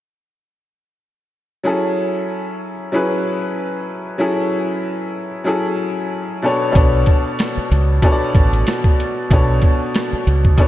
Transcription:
1.63 F#3 C#4 E4 G#4 A4
2.92 F#3 C#4 E4 G#4 B4
4.18 F#3 C#4 E4 G#4 A4
5.44 F#3 C#4 E4 G#4 A4
6.42 B2 B3 D4 A4 C#5
6.71 B2 B3 D4 A4 C#5
6.75 B1, kick, closed hi-hat
7.06 kick, closed hi-hat
7.39 cross-stick, snare, closed hi-hat
7.57 muted fingered electric bass stroke
7.71 C#2, closed hi-hat
8.02 B2 B3 D4 A4 C#5, kick, closed hi-hat
8.12 D5
8.35 A1, kick, closed hi-hat
8.53 closed hi-hat
8.67 cross-stick, snare, closed hi-hat
8.84 kick
9.00 closed hi-hat
9.30 B1 B2 B3 D4 A4 C#5, kick, closed hi-hat
9.62 kick, closed hi-hat
9.94 cross-stick, snare, closed hi-hat
10.13 muted fingered electric bass stroke
10.27 C#2, closed hi-hat
10.45 kick
10.57 B2 B3 D4 A4 C#5, kick, closed hi-hat

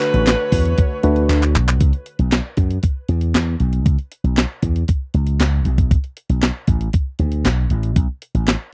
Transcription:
Already playing: D3 A3 D4 F#4 B4 C#5
0.01 clap, closed hi-hat
0.14 A1, closed hi-hat
0.27 snare, clap, closed hi-hat
0.29 clap
0.52 E2, kick, open hi-hat
0.65 closed hi-hat
0.78 kick, closed hi-hat
1.03 D2 A3 D4 F#4 B4, closed hi-hat
1.16 closed hi-hat
1.29 D2, clap, closed hi-hat
1.42 clap, closed hi-hat
1.55 B1, clap, closed hi-hat
1.68 clap, closed hi-hat
1.80 C#2, kick, closed hi-hat
1.93 closed hi-hat
2.06 closed hi-hat
2.19 B1, closed hi-hat
2.32 snare, clap, closed hi-hat
2.34 clap
2.57 F#2, kick, closed hi-hat
2.71 closed hi-hat
2.83 kick, closed hi-hat
3.08 E2, closed hi-hat
3.21 closed hi-hat
3.34 E2, snare, clap, closed hi-hat
3.60 B1, closed hi-hat
3.73 closed hi-hat
3.86 C#2, kick, closed hi-hat
3.99 closed hi-hat
4.12 closed hi-hat
4.24 B1, closed hi-hat
4.37 snare, clap, closed hi-hat
4.39 clap
4.62 E2, kick, closed hi-hat
4.76 closed hi-hat
4.88 kick, closed hi-hat
5.14 C#2, closed hi-hat
5.27 closed hi-hat
5.40 C#2, snare, clap, closed hi-hat
5.65 B1, closed hi-hat
5.78 kick, closed hi-hat
5.91 kick, closed hi-hat
6.04 closed hi-hat
6.17 closed hi-hat
6.29 B1, closed hi-hat
6.42 snare, clap, closed hi-hat
6.44 clap
6.67 A1, kick, closed hi-hat
6.81 closed hi-hat
6.93 kick, closed hi-hat
7.19 D2, closed hi-hat
7.32 closed hi-hat
7.45 B1, snare, clap, closed hi-hat
7.70 A1, closed hi-hat
7.83 closed hi-hat
7.96 B1, kick, closed hi-hat
8.22 closed hi-hat
8.34 A1, closed hi-hat
8.47 snare, clap, closed hi-hat
8.49 clap

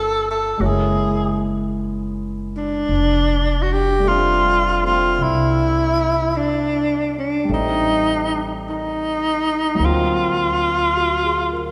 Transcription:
Already playing: G1 G3 A#3 C4 F4 A4
0.31 A4
0.58 F#1 G#3 A#3 F#4 C#5
0.63 E4 G#4
2.57 D4
2.89 F1
3.62 F#4
3.73 G4
3.99 G3 A3
4.06 C4 F4
4.10 D4
4.81 A3 C4
4.87 F4
5.19 C2
5.23 E4
6.37 D4
7.19 D4
7.44 G3
7.49 A1 A3 C4
7.53 D#4
8.70 D#4
9.75 F#3 A#3
9.79 D2 C4
9.85 F4
10.97 F#4
11.25 G#4
11.53 A#4

